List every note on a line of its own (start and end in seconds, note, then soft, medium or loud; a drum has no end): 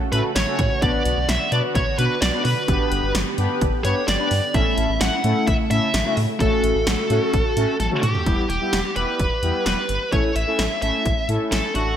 0.00 0.78 C#3 medium
0.00 0.80 A3 medium
0.00 2.65 F#4 medium
0.12 0.22 A2 loud
0.12 0.31 A3 medium
0.12 0.31 C#4 medium
0.12 0.31 F#4 medium
0.12 0.31 A4 medium
0.12 0.19 B4 medium
0.12 closed hi-hat medium
0.36 0.45 A1 loud
0.36 0.79 C#5 medium
0.36 snare loud
0.36 closed hi-hat medium
0.47 0.59 A3 medium
0.47 0.59 C#4 medium
0.47 0.59 F#4 medium
0.47 0.59 A4 medium
0.59 0.68 A2 medium
0.59 kick loud
0.59 closed hi-hat medium
0.71 0.77 F#4 medium
0.71 0.77 B4 medium
0.82 0.92 B1 loud
0.82 4.51 D3 medium
0.82 1.18 B3 medium
0.82 4.51 B3 medium
0.82 1.18 D4 medium
0.82 1.18 F#4 medium
0.82 1.18 B4 medium
0.82 1.30 D5 loud
0.82 kick loud
0.82 closed hi-hat medium
1.05 1.15 B1 loud
1.05 closed hi-hat medium
1.17 1.27 B1 medium
1.29 1.38 B1 loud
1.29 1.51 E5 loud
1.29 snare loud
1.29 closed hi-hat medium
1.52 1.61 B2 loud
1.52 1.76 B3 medium
1.52 1.76 D4 medium
1.52 1.76 F#4 medium
1.52 1.76 B4 medium
1.52 1.58 D5 loud
1.52 closed hi-hat medium
1.75 1.85 B1 loud
1.75 1.98 C#5 loud
1.75 kick loud
1.75 closed hi-hat medium
1.99 2.08 B2 loud
1.99 2.17 B3 medium
1.99 2.17 D4 medium
1.99 2.17 F#4 medium
1.99 2.17 B4 medium
1.99 2.21 B4 medium
1.99 closed hi-hat medium
2.22 2.31 B1 loud
2.22 2.45 D5 loud
2.22 snare loud
2.22 closed hi-hat medium
2.33 2.46 B3 medium
2.33 2.46 D4 medium
2.33 2.46 F#4 medium
2.33 2.46 B4 medium
2.45 2.54 B2 loud
2.45 3.11 B4 medium
2.45 open hi-hat medium
2.57 2.63 F#4 medium
2.57 2.63 B4 medium
2.68 2.78 G1 loud
2.68 3.05 B3 medium
2.68 3.05 D4 medium
2.68 4.52 G4 medium
2.68 3.05 G4 medium
2.68 3.05 B4 medium
2.68 kick loud
2.68 closed hi-hat medium
2.92 3.01 G1 loud
2.92 closed hi-hat medium
3.03 3.13 G1 loud
3.15 3.24 G1 loud
3.15 snare loud
3.15 closed hi-hat medium
3.38 3.48 G2 loud
3.38 3.62 B3 medium
3.38 3.62 D4 medium
3.38 3.62 G4 medium
3.38 3.62 B4 loud
3.38 closed hi-hat medium
3.61 3.71 G1 loud
3.61 kick loud
3.61 closed hi-hat medium
3.85 3.94 G2 medium
3.85 4.03 B3 medium
3.85 4.03 D4 medium
3.85 4.03 G4 medium
3.85 4.03 B4 medium
3.85 4.06 C#5 medium
3.85 closed hi-hat medium
4.08 4.17 G1 loud
4.08 4.56 D5 medium
4.08 snare loud
4.08 closed hi-hat medium
4.20 4.32 B3 medium
4.20 4.32 D4 medium
4.20 4.32 G4 medium
4.20 4.32 B4 medium
4.31 4.41 G2 loud
4.31 open hi-hat medium
4.43 4.49 G4 medium
4.43 4.49 B4 medium
4.54 4.64 A1 loud
4.54 8.23 C#3 medium
4.54 4.91 A3 medium
4.54 6.39 A3 medium
4.54 4.91 C#4 medium
4.54 4.91 E4 medium
4.54 6.39 E4 medium
4.54 4.91 A4 medium
4.54 5.01 E5 loud
4.54 kick loud
4.54 closed hi-hat medium
4.78 4.87 A1 loud
4.78 closed hi-hat medium
4.89 4.99 A1 loud
5.01 5.10 A1 loud
5.01 5.47 F#5 loud
5.01 snare loud
5.01 closed hi-hat medium
5.24 5.34 A2 loud
5.24 5.48 A3 medium
5.24 5.48 C#4 medium
5.24 5.48 E4 medium
5.24 5.48 A4 medium
5.24 closed hi-hat medium
5.47 5.57 A1 loud
5.47 5.54 E5 loud
5.47 kick loud
5.47 closed hi-hat medium
5.71 5.80 A2 loud
5.71 5.89 A3 medium
5.71 5.89 C#4 medium
5.71 5.89 E4 medium
5.71 5.89 A4 medium
5.71 6.14 E5 medium
5.71 closed hi-hat medium
5.94 6.03 A1 loud
5.94 snare loud
5.94 closed hi-hat medium
6.06 6.18 A3 medium
6.06 6.18 C#4 medium
6.06 6.18 E4 medium
6.06 6.18 F#4 medium
6.17 6.27 A2 loud
6.17 open hi-hat medium
6.29 6.35 E4 medium
6.29 6.35 A4 medium
6.40 6.50 A1 loud
6.40 6.77 A3 medium
6.40 8.25 A3 medium
6.40 6.77 C#4 medium
6.40 6.77 F#4 medium
6.40 8.25 F#4 medium
6.40 7.76 A4 loud
6.40 6.77 A4 medium
6.40 kick loud
6.40 closed hi-hat medium
6.64 6.73 A1 loud
6.64 closed hi-hat medium
6.75 6.85 A1 medium
6.87 6.96 A1 loud
6.87 snare loud
6.87 closed hi-hat medium
7.10 7.20 A2 loud
7.10 7.34 A3 medium
7.10 7.34 C#4 medium
7.10 7.34 F#4 medium
7.10 7.34 A4 loud
7.10 closed hi-hat medium
7.34 7.43 A1 loud
7.34 kick loud
7.34 closed hi-hat medium
7.57 7.66 A2 loud
7.57 7.75 A3 medium
7.57 7.75 C#4 medium
7.57 7.75 F#4 medium
7.57 7.75 A4 loud
7.57 closed hi-hat medium
7.80 7.89 A1 loud
7.80 7.86 A4 medium
7.80 closed hi-hat medium
7.80 high tom medium
7.92 8.04 A3 medium
7.92 8.04 C#4 medium
7.92 8.04 F#4 medium
7.92 8.04 A4 loud
7.92 mid tom medium
8.03 8.13 A2 loud
8.03 8.46 G4 medium
8.03 closed hi-hat medium
8.03 mid tom medium
8.15 8.21 F#4 medium
8.15 8.21 A4 loud
8.15 floor tom medium
8.26 8.36 E1 loud
8.26 8.45 G3 medium
8.26 8.45 B3 medium
8.26 8.45 E4 medium
8.26 8.45 G4 medium
8.26 kick loud
8.26 closed hi-hat medium
8.50 8.59 E1 loud
8.50 8.93 G4 medium
8.50 closed hi-hat medium
8.61 8.80 G3 medium
8.61 8.80 B3 medium
8.61 8.80 E4 medium
8.61 8.79 G4 medium
8.73 8.82 E1 loud
8.73 snare loud
8.73 closed hi-hat medium
8.96 9.06 E1 loud
8.96 9.20 G3 medium
8.96 9.20 B3 medium
8.96 9.20 E4 medium
8.96 9.20 G4 medium
8.96 9.62 B4 medium
8.96 closed hi-hat medium
9.20 9.29 E1 loud
9.20 kick medium
9.20 closed hi-hat medium
9.43 9.52 E2 loud
9.43 9.79 G3 medium
9.43 9.79 B3 medium
9.43 9.79 E4 medium
9.43 9.79 G4 medium
9.43 closed hi-hat medium
9.66 9.75 E1 loud
9.66 10.09 B4 medium
9.66 snare loud
9.66 closed hi-hat medium
9.89 9.99 G1 loud
9.89 closed hi-hat medium
10.12 10.22 A1 loud
10.12 10.31 A3 medium
10.12 10.31 C#4 medium
10.12 10.31 E4 medium
10.12 10.31 A4 medium
10.12 10.34 C#5 loud
10.12 kick loud
10.12 closed hi-hat medium
10.36 10.45 A1 loud
10.36 10.81 E5 loud
10.36 closed hi-hat medium
10.47 10.65 A3 medium
10.47 10.65 C#4 medium
10.47 10.65 E4 medium
10.47 10.65 A4 medium
10.59 10.68 A1 loud
10.59 snare loud
10.59 closed hi-hat medium
10.82 10.92 A1 loud
10.82 11.06 A3 medium
10.82 11.06 C#4 medium
10.82 11.06 E4 medium
10.82 11.06 A4 medium
10.82 11.26 E5 loud
10.82 closed hi-hat medium
11.06 11.15 A1 loud
11.06 kick medium
11.06 closed hi-hat medium
11.29 11.38 A2 medium
11.29 11.65 A3 medium
11.29 11.65 C#4 medium
11.29 11.65 E4 medium
11.29 11.65 A4 medium
11.29 closed hi-hat medium
11.52 11.61 A1 loud
11.52 11.75 A4 medium
11.52 snare loud
11.52 closed hi-hat medium
11.75 11.97 A1 loud
11.75 11.97 A3 medium
11.75 11.97 D4 medium
11.75 11.97 F#4 medium
11.75 11.97 A4 medium
11.75 closed hi-hat medium